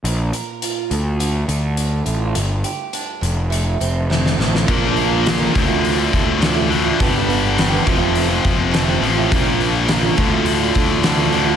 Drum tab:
CC |----------------|----------------|x---------------|----------------|
HH |x-x-x-x-x-x-x-x-|x-x-x-x-x-x-----|--o-o-o-o-o-o-o-|o-o-o-o-o-o-o-o-|
SD |----------------|------------oooo|----o-------o---|----o-------o---|
BD |----------------|----------------|o-----o---o-----|o-----o---o-----|

CC |----------------|
HH |o-o-o-o-o-o-o-o-|
SD |----o-------o---|
BD |o-----o---o-----|